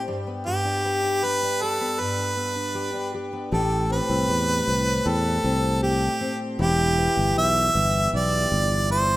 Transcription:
Already playing: G3 C4 G4
0.08 G2
0.27 B3
0.46 G2 G4
0.65 D4
0.85 B3
1.04 D4
1.23 G4 B4
1.43 D4
1.62 G4 A4
1.81 B3
2.00 G2 B4
2.19 D4
2.37 B3
2.56 D4
2.75 G4
2.94 D4
3.14 G4
3.33 B3
3.52 A1 A2 G4 A4
3.90 C4 B4
4.10 C2
4.28 E2 G3
4.67 C2 C4
5.06 E2 G3 A4
5.44 C2 C4
5.83 G4
6.21 C4
6.59 E1 E2 E4 G4
6.98 B3
7.17 G1
7.36 B1 G3 E5
7.74 G1 B3
8.13 B1 G3 D5
8.52 G1
8.90 E4 C5

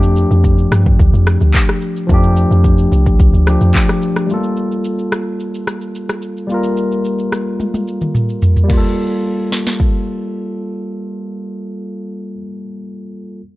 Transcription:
Already playing: F2 F3 A3 D4 G4
0.03 shaker
0.16 shaker
0.31 F2, shaker
0.44 kick, shaker
0.58 shaker
0.71 G2, cross-stick, shaker
0.86 kick
0.99 D2, kick, shaker
1.13 F2, shaker
1.27 cross-stick, shaker
1.41 D2, shaker
1.54 kick, clap, shaker
1.69 cross-stick, shaker
1.82 shaker
1.97 shaker
2.07 F2 F3 A3, kick, shaker
2.11 D4 G4
2.23 shaker
2.36 shaker
2.51 F2, shaker
2.64 kick, shaker
2.78 shaker
2.92 C2, shaker
3.06 kick, shaker
3.20 C2, kick, shaker
3.34 D2, shaker
3.46 F3 A3 D4 G4, cross-stick, shaker
3.61 F2, shaker
3.75 kick, clap, shaker
3.89 cross-stick, shaker
4.02 shaker
4.16 cross-stick, shaker
4.27 G3 A3, shaker
4.31 F4 A4
4.35 A#3
4.44 shaker
4.57 shaker
4.72 shaker
4.85 shaker
4.99 shaker
5.12 cross-stick, shaker
5.40 shaker
5.55 shaker
5.67 cross-stick, shaker
5.81 shaker
5.95 shaker
6.09 cross-stick, shaker
6.22 shaker
6.37 shaker
6.47 G3 A#3, shaker
6.52 F4 A#4
6.63 shaker
6.77 shaker
6.92 shaker
7.05 shaker
7.19 shaker
7.32 cross-stick, shaker
7.60 high tom, shaker
7.74 high tom, shaker
7.88 shaker
8.01 mid tom, shaker
8.15 mid tom, shaker
8.29 shaker
8.42 floor tom, shaker
8.57 floor tom, shaker
8.64 G3
8.68 A#3, kick, crash
8.73 F4
8.78 A4
9.52 snare
9.67 snare
9.80 kick

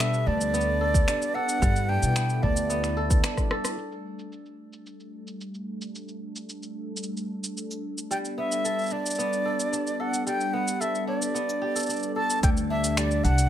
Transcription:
Already playing: B2 G3 B3 D4 A4 E5
0.00 B3, finger snap, shaker
0.14 shaker
0.27 D2 D4 D5
0.41 shaker
0.54 B3, shaker
0.61 shaker
0.81 A4
0.94 kick, shaker
1.08 D4, finger snap, shaker
1.22 shaker
1.35 A4 F#5
1.49 shaker
1.62 G2 G3 E4, kick, shaker
1.76 shaker
1.89 D4 G5
2.03 B2, shaker
2.16 B3, finger snap, shaker
2.30 shaker
2.43 D2 D4 D5, kick
2.57 shaker
2.70 B3, shaker
2.84 finger snap, shaker
2.97 A4
3.10 kick, shaker
3.24 D4, finger snap, cross-stick, shaker
3.37 kick, cross-stick, shaker
3.51 A4, cross-stick
3.65 cross-stick, shaker
3.78 G3 A3 D4 A4, shaker
3.92 shaker
4.19 shaker
4.32 shaker
4.46 shaker
4.73 shaker
4.86 shaker
5.00 shaker
5.27 shaker
5.41 shaker
5.54 shaker
5.81 shaker
5.95 shaker
6.08 shaker
6.36 shaker
6.49 shaker
6.63 shaker
6.97 shaker
7.03 shaker
7.17 shaker
7.44 shaker
7.57 shaker
7.71 shaker
7.98 shaker
8.11 G3 B3 G5, shaker
8.25 shaker
8.38 B3 E5
8.52 shaker
8.65 A4, shaker
8.79 shaker
8.81 shaker
8.84 shaker
8.86 shaker
8.88 shaker
8.90 D4 D5, shaker
9.06 shaker
9.10 shaker
9.15 B3, shaker
9.19 shaker
9.33 shaker
9.45 A4
9.60 shaker
9.73 D4, shaker
9.87 shaker
10.00 A4 F#5
10.14 shaker
10.27 G3 G5, shaker
10.41 shaker
10.53 B3 F#5
10.68 shaker
10.80 A4 E5, shaker
10.95 shaker
11.07 D4 D5
11.22 shaker
11.35 B3, shaker
11.49 shaker
11.62 G4
11.75 A4, shaker
11.79 shaker
11.83 shaker
11.86 D4, shaker
11.90 shaker
11.93 shaker
11.96 shaker
11.99 shaker
12.03 shaker
12.16 A4 A5
12.30 shaker
12.43 D2 D3 G3 A3 D4 A4 G5, kick, open hi-hat, shaker
12.57 shaker
12.70 D4 E5
12.84 open hi-hat, shaker
12.91 E5
12.97 G3 D5, finger snap, open hi-hat, shaker
13.11 shaker
13.24 C2 D4 F#5, open hi-hat
13.38 open hi-hat, shaker

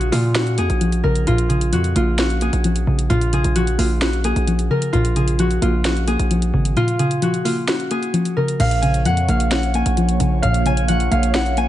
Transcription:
Already playing: A#1 A#2 C#3 F3 F#4 G#4
0.01 closed hi-hat
0.12 A#2 A#3 F4, open hi-hat
0.35 C#4 F#4, snare, closed hi-hat
0.47 closed hi-hat
0.58 F2 A#3 G#4, closed hi-hat
0.70 A#1, closed hi-hat
0.81 F3, closed hi-hat
0.92 closed hi-hat
1.04 A#1 C#3 A#4
1.16 closed hi-hat
1.27 A#1 A#2 F4, closed hi-hat
1.38 closed hi-hat
1.49 C#3 G#4, closed hi-hat
1.61 closed hi-hat
1.72 F2 F3 F#4, closed hi-hat
1.84 closed hi-hat
1.96 A#1 A#3 F4, closed hi-hat
2.19 C#4 F#4, snare, closed hi-hat
2.30 closed hi-hat
2.41 A#3 G#4, closed hi-hat
2.53 A#1, closed hi-hat
2.64 F3, closed hi-hat
2.76 closed hi-hat
2.87 A#1 C#3
2.99 closed hi-hat
3.10 A#1 A#2 F4, closed hi-hat
3.21 closed hi-hat
3.33 C#3 G#4, closed hi-hat
3.44 A#1, closed hi-hat
3.56 F3 F#4, closed hi-hat
3.67 closed hi-hat
3.78 A#1 A#3 F4, open hi-hat
4.02 C#4 F#4, snare, closed hi-hat
4.13 closed hi-hat
4.24 A#3 G#4, closed hi-hat
4.36 A#1, closed hi-hat
4.47 F3, closed hi-hat
4.59 closed hi-hat
4.70 C#3 A#4
4.82 closed hi-hat
4.93 A#1 A#2 F4, closed hi-hat
5.05 closed hi-hat
5.16 C#3 G#4, closed hi-hat
5.28 closed hi-hat
5.39 F3 F#4, closed hi-hat
5.51 closed hi-hat
5.62 A#1 A#3 F4, closed hi-hat
5.85 C#4 F#4, snare, closed hi-hat
5.97 closed hi-hat
6.08 A#3 G#4, closed hi-hat
6.19 A#1, closed hi-hat
6.31 F3, closed hi-hat
6.42 closed hi-hat
6.54 G#1 C#3
6.65 closed hi-hat
6.76 A#2 F4, closed hi-hat
6.88 closed hi-hat
6.99 C#3 G#4, closed hi-hat
7.11 closed hi-hat
7.22 F3 F#4, closed hi-hat
7.34 closed hi-hat
7.45 A#3 F4, open hi-hat
7.68 C#4 F#4, snare, closed hi-hat
7.80 closed hi-hat
7.91 A#3 G#4, closed hi-hat
8.03 closed hi-hat
8.14 F3, closed hi-hat
8.25 closed hi-hat
8.37 C#3 A#4
8.48 closed hi-hat
8.60 A#1 A#2 A#3 F4 C#5 F5, closed hi-hat, crash
8.71 closed hi-hat
8.82 C#3 G#5, closed hi-hat
8.94 closed hi-hat
9.05 F2 F3 F#5, closed hi-hat
9.17 closed hi-hat
9.29 A#1 A#3 F5, closed hi-hat
9.40 closed hi-hat
9.51 C#4 F#5, snare, closed hi-hat
9.63 closed hi-hat
9.74 A#3 G#5, closed hi-hat
9.86 A#1, closed hi-hat
9.97 F3, closed hi-hat
10.09 closed hi-hat
10.20 A#1 C#3, closed hi-hat
10.42 A#1 A#2 F5, closed hi-hat
10.54 closed hi-hat
10.66 C#3 G#5, closed hi-hat
10.77 closed hi-hat
10.88 F3 F#5, closed hi-hat
11.00 closed hi-hat
11.11 A#1 A#3 F5, closed hi-hat
11.23 closed hi-hat
11.34 C#4 F#5, snare, closed hi-hat
11.46 closed hi-hat
11.57 A#3 G#5, closed hi-hat

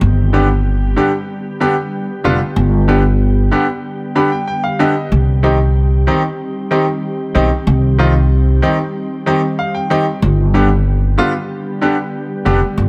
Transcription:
Already playing: G3
0.01 G1 D3 B3 G4
0.33 D3 G3 B3 D4 G4
0.96 D3 G3 B3 D4 G4
1.60 D3 G3 B3 D4 G4
2.24 F1 D3 G3 B3 D4 F4
2.56 G1
2.88 D3 G3 B3 D4 G4
3.51 D3 G3 B3 D4 G4
4.15 D3 G3 B3 D4 G4 B5
4.32 G5
4.47 G5
4.64 F5
4.79 D3 G3 B3 D4 G4 D#5
5.12 C2 D#3 G3 C4
5.43 D#3 G3 C4 D#4 G4
6.07 D#3 G3 C4 D#4 G4
6.71 D#3 G3 C4 D#4 G4
7.35 B1 D#3 G3 C4 D#4 G4
7.67 C2
7.98 D#3 G3 C4 D#4 F4
8.62 D#3 G3 C4 D#4 G4
9.26 D#3 G3 C4 D#4 G4
9.59 F5
9.75 G5
9.90 D#3 G3 C4 D#4 G4
10.22 G1 D3 B3 G4
10.54 D3 G3 B3 D4 G4
11.18 D3 G3 B3 D4 F4
11.81 D3 G3 B3 D4 G4
12.45 F1 D3 G3 B3 D4 G4
12.78 G1

